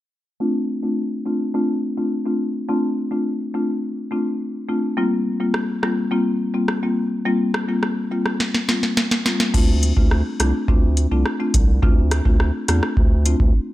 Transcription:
0.40 0.80 A3 medium
0.40 0.80 C4 medium
0.40 0.80 D4 medium
0.40 0.80 F4 medium
0.83 1.22 A3 medium
0.83 1.22 C4 medium
0.83 1.23 D4 medium
0.83 1.23 F4 medium
1.26 1.52 A3 medium
1.26 1.52 C4 medium
1.26 1.52 D4 medium
1.26 1.52 F4 medium
1.54 1.94 A3 medium
1.54 1.94 C4 medium
1.54 1.94 D4 medium
1.54 1.94 F4 loud
1.97 2.09 A3 medium
1.97 2.09 C4 medium
1.97 2.09 D4 medium
1.97 2.10 F4 medium
2.26 2.38 A3 medium
2.26 2.38 C4 medium
2.26 2.38 D4 medium
2.26 2.38 F4 medium
2.69 3.08 A3 medium
2.69 3.08 C4 medium
2.69 3.08 D4 medium
2.69 3.08 F4 loud
3.11 3.51 A3 medium
3.11 3.51 C4 medium
3.11 3.51 D4 medium
3.11 3.51 F4 medium
3.54 3.81 A3 medium
3.54 3.81 C4 medium
3.54 3.81 D4 medium
3.54 3.81 F4 medium
4.11 4.23 A3 medium
4.11 4.24 C4 medium
4.11 4.24 D4 medium
4.11 4.24 F4 medium
4.69 4.81 A3 medium
4.69 4.81 C4 medium
4.69 4.81 D4 medium
4.69 4.81 F4 medium
4.97 5.37 G3 medium
4.97 5.37 A#3 medium
4.97 5.37 C4 medium
4.97 5.37 F4 loud
5.40 5.79 G3 medium
5.40 5.80 A#3 medium
5.40 5.80 C4 medium
5.40 5.80 F4 medium
5.54 cross-stick medium
5.83 6.09 G3 medium
5.83 6.09 A#3 medium
5.83 6.09 C4 medium
5.83 6.09 F4 medium
5.83 cross-stick medium
6.11 6.51 G3 medium
6.11 6.51 A#3 medium
6.11 6.51 C4 medium
6.11 6.51 F4 loud
6.54 6.66 G3 medium
6.54 6.66 A#3 medium
6.54 6.66 C4 medium
6.54 6.66 F4 medium
6.68 cross-stick medium
6.83 6.95 G3 medium
6.83 6.95 A#3 medium
6.83 6.95 C4 medium
6.83 6.95 F4 medium
7.25 7.65 G3 loud
7.25 7.65 A#3 medium
7.25 7.65 C4 medium
7.25 7.65 F4 loud
7.54 cross-stick loud
7.68 8.08 G3 medium
7.68 8.08 A#3 medium
7.68 8.08 C4 medium
7.68 8.08 F4 medium
7.83 cross-stick medium
8.11 8.38 G3 medium
8.11 8.38 A#3 medium
8.11 8.38 C4 medium
8.11 8.38 F4 medium
8.26 cross-stick medium
8.40 snare medium
8.54 snare soft
8.68 8.80 G3 medium
8.68 8.81 A#3 medium
8.68 8.81 C4 medium
8.68 8.81 F4 medium
8.68 snare medium
8.83 snare medium
8.97 snare medium
9.11 snare medium
9.25 9.38 G3 medium
9.25 9.38 A#3 medium
9.25 9.38 C4 medium
9.25 9.38 F4 medium
9.25 snare medium
9.40 snare medium
9.54 9.93 D2 loud
9.54 9.93 A3 medium
9.54 9.94 C4 medium
9.54 9.94 D4 medium
9.54 9.94 F4 loud
9.54 kick loud
9.54 crash medium
9.83 closed hi-hat medium
9.97 10.23 D2 medium
9.97 10.36 A3 medium
9.97 10.36 C4 medium
9.97 10.37 D4 medium
9.97 10.37 F4 medium
9.97 kick medium
10.11 cross-stick medium
10.40 10.53 C2 medium
10.40 10.66 A3 medium
10.40 10.66 C4 medium
10.40 10.66 D4 medium
10.40 10.66 F4 medium
10.40 cross-stick medium
10.40 closed hi-hat medium
10.68 11.07 D2 medium
10.68 11.08 A3 medium
10.68 11.08 C4 medium
10.68 11.08 D4 medium
10.68 11.08 F4 loud
10.68 kick medium
10.97 closed hi-hat medium
11.11 11.24 C2 medium
11.11 11.23 A3 medium
11.11 11.24 C4 medium
11.11 11.24 D4 medium
11.11 11.24 F4 medium
11.26 cross-stick medium
11.40 11.52 A3 medium
11.40 11.52 C4 medium
11.40 11.52 D4 medium
11.40 11.52 F4 medium
11.54 11.80 C2 loud
11.54 kick medium
11.54 closed hi-hat medium
11.83 12.21 D2 loud
11.83 12.22 A3 medium
11.83 12.22 C4 medium
11.83 12.22 D4 medium
11.83 12.22 F4 loud
11.83 kick loud
12.11 cross-stick loud
12.11 closed hi-hat medium
12.25 12.51 D2 medium
12.25 12.65 A3 medium
12.25 12.65 C4 medium
12.25 12.65 D4 medium
12.25 12.65 F4 medium
12.25 kick medium
12.40 cross-stick medium
12.68 12.81 E2 medium
12.68 12.95 A3 medium
12.68 12.95 C4 medium
12.68 12.95 D4 medium
12.68 12.95 F4 medium
12.68 cross-stick medium
12.68 closed hi-hat medium
12.83 cross-stick medium
12.97 13.35 D2 loud
12.97 kick medium
13.26 13.38 A3 medium
13.26 13.38 C4 medium
13.26 13.38 D4 medium
13.26 13.38 F4 medium
13.26 closed hi-hat medium
13.40 13.53 D2 medium
13.40 kick medium

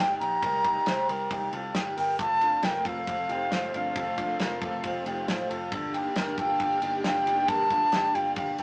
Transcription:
0.00 0.16 G1 medium
0.00 0.20 D#4 medium
0.00 0.20 G4 medium
0.00 0.16 G5 loud
0.20 0.39 A#1 medium
0.20 0.43 D#4 medium
0.20 0.42 G4 medium
0.20 1.48 A#5 loud
0.20 ride medium
0.42 0.79 C2 medium
0.42 0.64 G4 medium
0.42 0.65 A#4 loud
0.42 kick loud
0.42 ride medium
0.65 0.87 D#4 medium
0.65 0.86 G4 medium
0.65 kick medium
0.65 ride medium
0.86 1.05 C2 loud
0.86 1.08 G4 medium
0.86 1.08 C5 medium
0.86 snare loud
0.86 ride medium
1.09 1.27 C2 loud
1.09 1.30 G4 medium
1.09 1.31 A#4 medium
1.09 ride medium
1.31 1.49 C2 loud
1.31 1.53 D#4 medium
1.31 1.53 G4 medium
1.31 kick medium
1.31 ride medium
1.53 1.71 C2 loud
1.53 1.75 F4 medium
1.53 1.75 A4 medium
1.53 ride medium
1.75 1.93 G1 medium
1.75 1.98 D#4 medium
1.75 1.97 G4 medium
1.75 snare loud
1.75 ride medium
1.97 2.15 G1 medium
1.97 2.20 G4 medium
1.97 2.19 A#4 medium
1.97 2.18 G5 medium
1.97 open hi-hat medium
1.97 ride medium
2.19 2.55 F1 loud
2.19 5.69 F3 medium
2.19 5.69 A3 medium
2.19 5.69 C4 medium
2.19 2.40 F4 medium
2.19 2.41 A4 loud
2.19 2.66 A5 loud
2.19 kick loud
2.19 hi-hat pedal medium
2.19 ride medium
2.41 2.64 D4 medium
2.41 2.63 F4 medium
2.41 ride medium
2.63 2.81 F1 loud
2.63 2.85 F4 medium
2.63 2.85 A#4 medium
2.63 2.88 G5 loud
2.63 snare loud
2.63 ride medium
2.85 3.03 F1 loud
2.85 3.27 F4 medium
2.85 3.27 A4 medium
2.85 3.74 F5 loud
2.85 kick medium
2.85 ride medium
3.07 3.26 F1 loud
3.07 kick medium
3.07 ride medium
3.29 3.47 F1 loud
3.29 3.52 D#4 medium
3.29 3.51 G4 medium
3.29 ride medium
3.51 3.70 G1 loud
3.51 3.74 C4 medium
3.51 3.73 F4 medium
3.51 snare loud
3.51 ride medium
3.74 3.92 G1 loud
3.74 3.96 D4 medium
3.74 3.95 F4 medium
3.74 5.03 F5 loud
3.74 ride medium
3.96 4.32 F1 loud
3.96 4.16 F4 medium
3.96 4.18 A4 loud
3.96 kick loud
3.96 ride medium
4.18 4.40 D4 medium
4.18 4.39 F4 medium
4.18 kick medium
4.18 ride medium
4.39 4.58 F1 loud
4.39 4.61 F4 medium
4.39 4.61 A#4 medium
4.39 snare loud
4.39 ride medium
4.61 4.80 F1 medium
4.61 4.83 F4 medium
4.61 4.84 A4 medium
4.61 kick loud
4.61 ride medium
4.84 5.02 F1 loud
4.84 5.06 C4 medium
4.84 5.05 F4 medium
4.84 kick medium
4.84 ride medium
5.06 5.24 F1 medium
5.06 5.28 D#4 medium
5.06 5.27 G4 medium
5.06 ride medium
5.28 5.46 A1 medium
5.28 5.50 C4 medium
5.28 5.49 F4 medium
5.28 snare loud
5.28 ride medium
5.50 5.68 F1 loud
5.50 5.72 F4 medium
5.50 5.70 A4 medium
5.50 ride medium
5.72 6.08 G1 medium
5.72 8.63 G3 medium
5.72 8.63 A#3 medium
5.72 5.94 D4 medium
5.72 8.63 D4 medium
5.72 5.94 A4 loud
5.72 kick loud
5.72 ride medium
5.94 6.17 D#4 medium
5.94 6.15 G4 medium
5.94 ride medium
6.16 6.34 G1 loud
6.16 6.38 G4 medium
6.16 6.38 A#4 medium
6.16 snare loud
6.16 ride medium
6.38 6.56 G1 loud
6.38 6.80 F4 soft
6.38 6.80 A4 medium
6.38 7.01 G5 loud
6.38 kick medium
6.38 ride medium
6.60 6.78 G1 loud
6.60 kick medium
6.60 ride medium
6.82 7.00 G1 loud
6.82 7.05 D#4 medium
6.82 7.04 G4 medium
6.82 ride medium
7.04 7.22 F1 loud
7.04 7.27 D4 medium
7.04 7.26 F4 medium
7.04 7.50 G5 loud
7.04 snare loud
7.04 ride medium
7.26 7.44 F1 loud
7.26 7.49 D#4 medium
7.26 7.48 G4 medium
7.26 ride medium
7.48 7.85 G1 medium
7.48 7.70 G4 medium
7.48 7.71 A#4 loud
7.48 8.16 A5 loud
7.48 kick loud
7.48 ride medium
7.70 7.92 D4 medium
7.70 7.92 F4 medium
7.70 kick medium
7.70 ride medium
7.92 8.10 G1 loud
7.92 8.14 D4 medium
7.92 8.14 G4 medium
7.92 snare loud
7.92 ride medium
8.14 8.33 G1 loud
8.14 8.36 D4 medium
8.14 8.36 F4 medium
8.14 8.36 G5 loud
8.14 ride medium
8.36 8.55 G1 loud
8.36 8.59 D4 medium
8.36 8.59 G4 medium
8.36 8.57 F5 medium
8.36 kick medium
8.36 ride medium
8.58 8.63 G1 loud
8.58 8.63 F4 medium
8.58 8.63 A4 medium
8.58 8.63 G5 medium
8.58 ride medium

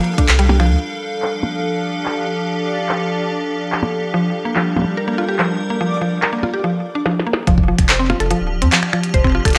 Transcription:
0.00 0.81 G3 medium
0.00 6.64 D4 medium
0.00 6.64 A4 medium
0.00 0.81 A#4 medium
0.00 6.64 F5 medium
0.18 0.26 D4 medium
0.18 kick loud
0.18 closed hi-hat soft
0.28 0.72 C2 medium
0.28 clap loud
0.28 closed hi-hat medium
0.39 0.47 G3 loud
0.39 closed hi-hat medium
0.49 0.54 G3 medium
0.49 percussion blips medium
0.60 0.70 F3 medium
0.60 finger snap medium
0.70 0.77 D2 medium
0.81 4.14 F3 medium
0.81 6.64 D4 medium
0.81 6.64 D5 medium
0.81 closed hi-hat soft
1.22 4.93 G4 loud
1.22 clap loud
1.43 percussion blips medium
2.06 clap loud
2.89 clap loud
3.72 clap loud
3.83 percussion blips medium
4.14 4.22 F3 loud
4.14 6.64 G3 medium
4.45 4.53 A#3 medium
4.56 4.65 F3 medium
4.56 clap loud
4.76 4.85 F3 medium
4.76 percussion blips medium
4.79 percussion blips medium
4.82 percussion blips soft
4.84 percussion blips soft
4.90 6.64 A#4 medium
4.97 5.06 A#4 medium
5.08 5.16 A#3 medium
5.18 5.26 F4 medium
5.29 5.37 G4 medium
5.39 5.47 F3 loud
5.39 clap loud
5.70 5.78 A#3 medium
5.81 5.91 F3 medium
6.01 6.10 F3 medium
6.22 6.30 A#4 medium
6.22 clap loud
6.33 6.41 A#3 medium
6.43 6.51 F4 medium
6.43 percussion blips medium
6.54 6.62 G4 medium
6.64 6.72 F3 medium
6.95 7.05 D4 medium
7.06 7.14 F3 medium
7.06 snare medium
7.20 snare medium
7.27 7.36 A#3 medium
7.33 snare medium
7.47 7.72 F1 loud
7.47 9.58 F3 medium
7.47 7.57 F3 loud
7.47 9.58 D4 medium
7.47 9.58 D5 medium
7.47 kick loud
7.47 closed hi-hat medium
7.58 kick medium
7.64 9.58 G4 medium
7.68 7.76 F3 medium
7.79 8.14 F1 medium
7.79 finger snap medium
7.79 kick loud
7.79 closed hi-hat medium
7.89 7.97 C5 medium
7.89 clap loud
7.89 closed hi-hat medium
7.99 8.08 C4 medium
8.10 8.18 F4 medium
8.10 finger snap medium
8.10 percussion blips medium
8.20 8.33 F1 medium
8.20 8.28 A4 medium
8.20 closed hi-hat medium
8.31 8.39 F3 loud
8.31 closed hi-hat medium
8.41 8.63 D1 medium
8.62 8.68 F2 loud
8.62 8.70 C4 medium
8.62 closed hi-hat medium
8.72 8.82 F3 loud
8.72 clap loud
8.72 closed hi-hat medium
8.83 finger snap medium
8.93 9.01 F3 medium
8.93 finger snap medium
9.04 closed hi-hat medium
9.14 9.39 F1 loud
9.14 9.22 C5 medium
9.14 kick loud
9.14 closed hi-hat medium
9.24 9.33 C4 medium
9.24 finger snap soft
9.24 kick medium
9.27 finger snap soft
9.30 finger snap soft
9.32 finger snap soft
9.35 9.43 F4 medium
9.35 finger snap soft
9.37 finger snap soft
9.40 finger snap soft
9.43 finger snap soft
9.45 9.58 F1 medium
9.45 9.53 A4 medium
9.45 finger snap medium
9.45 kick loud
9.45 closed hi-hat medium
9.48 closed hi-hat medium
9.50 closed hi-hat soft
9.53 closed hi-hat soft

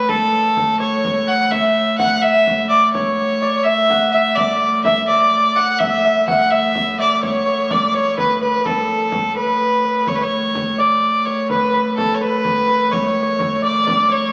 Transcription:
0.00 4.37 A2 medium
0.00 0.10 B4 medium
0.00 1.90 B4 medium
0.00 0.79 C#5 medium
0.09 0.79 A4 medium
0.09 2.28 A4 medium
0.09 frame drum medium
0.57 frame drum medium
0.80 1.29 C#5 medium
0.80 2.71 C#5 medium
0.80 frame drum soft
1.04 frame drum medium
1.27 1.52 F#5 medium
1.51 1.97 E5 medium
1.51 2.23 E5 medium
1.51 frame drum medium
1.98 2.23 F#5 medium
1.98 3.60 F#5 medium
1.98 frame drum medium
2.21 2.69 E5 medium
2.21 3.65 E5 medium
2.21 frame drum soft
2.47 frame drum medium
2.69 2.92 D5 medium
2.92 3.65 C#5 medium
2.92 3.48 C#5 medium
2.92 frame drum medium
3.42 4.37 D5 medium
3.64 4.10 E5 medium
3.64 4.14 E5 medium
3.90 5.51 F#5 medium
3.90 frame drum medium
4.11 4.37 E5 medium
4.11 4.85 E5 medium
4.35 10.09 A2 medium
4.35 4.83 D5 medium
4.35 5.08 D5 medium
4.35 frame drum medium
4.84 5.06 E5 medium
4.84 5.80 E5 medium
4.84 frame drum medium
5.08 5.57 D5 medium
5.08 6.93 D5 medium
5.08 frame drum soft
5.56 5.80 F#5 medium
5.56 6.27 F#5 medium
5.79 6.27 E5 medium
5.79 6.04 E5 medium
5.79 frame drum medium
6.05 6.51 E5 medium
6.28 7.88 F#5 medium
6.28 6.52 F#5 medium
6.28 frame drum medium
6.50 6.98 E5 medium
6.50 8.24 E5 medium
6.50 frame drum soft
6.75 frame drum medium
6.99 7.29 D5 medium
6.99 7.21 D5 medium
7.23 7.45 C#5 medium
7.23 7.72 C#5 medium
7.23 frame drum medium
7.46 7.76 C#5 medium
7.70 8.00 D5 medium
7.70 7.95 D5 medium
7.70 frame drum medium
7.94 8.17 C#5 medium
7.94 9.85 C#5 medium
7.94 frame drum soft
8.17 8.41 B4 medium
8.17 8.40 B4 medium
8.17 frame drum medium
8.42 8.58 B4 medium
8.42 8.67 B4 medium
8.59 9.36 B4 soft
8.65 10.84 A4 medium
8.65 9.36 A4 medium
8.65 frame drum medium
8.89 frame drum soft
9.12 frame drum medium
9.36 10.09 B4 medium
9.36 9.84 B4 medium
9.36 frame drum soft
9.84 11.50 B4 medium
10.07 14.32 A2 medium
10.07 10.17 C#5 medium
10.07 10.21 C#5 medium
10.07 frame drum medium
10.15 10.24 B4 medium
10.21 10.84 C#5 medium
10.21 10.81 C#5 medium
10.31 frame drum soft
10.55 frame drum medium
10.78 11.33 D5 medium
10.78 11.27 D5 medium
10.78 frame drum soft
11.25 11.49 C#5 medium
11.25 12.91 C#5 medium
11.49 11.94 B4 medium
11.49 11.74 B4 medium
11.49 frame drum medium
11.74 12.21 B4 medium
11.74 frame drum soft
11.97 12.16 A4 medium
11.97 14.17 A4 medium
11.97 frame drum medium
12.14 12.23 C#5 medium
12.21 12.67 B4 medium
12.21 12.93 B4 medium
12.21 frame drum soft
12.45 frame drum medium
12.68 14.32 B4 medium
12.91 13.06 C#5 medium
12.91 13.63 C#5 medium
12.91 frame drum medium
13.07 13.22 C#5 medium
13.16 frame drum soft
13.23 13.38 C#5 medium
13.39 13.68 C#5 medium
13.39 frame drum medium
13.62 13.86 D5 medium
13.62 14.13 D5 medium
13.62 frame drum soft
13.86 14.15 D5 medium
13.86 frame drum medium
14.09 14.32 C#5 medium

